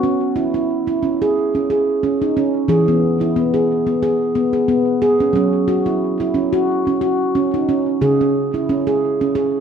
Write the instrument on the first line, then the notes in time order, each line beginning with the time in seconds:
handpan
0.03 C#4
0.36 E4
0.54 E4
0.87 E4
1.03 C#4
1.22 G#4
1.55 C#4
1.70 G#4
2.03 C#4
2.22 D#4
2.37 C#4
2.68 E3 G#4
2.88 B3
3.21 E4
3.36 B3
3.54 G#4
3.87 B3
4.03 G#4
4.35 B3
4.53 G#4
4.68 B3
5.02 G#4
5.20 C#4
5.33 F#3 C#4
5.68 F#4
5.86 E4
6.20 E4
6.34 C#4
6.53 F#4
6.87 C#4
7.01 F#4
7.35 C#4
7.54 D#4
7.69 C#4
8.01 C#3 G#4
8.21 C#4
8.54 E4
8.69 C#4
8.87 G#4
9.21 C#4
9.35 G#4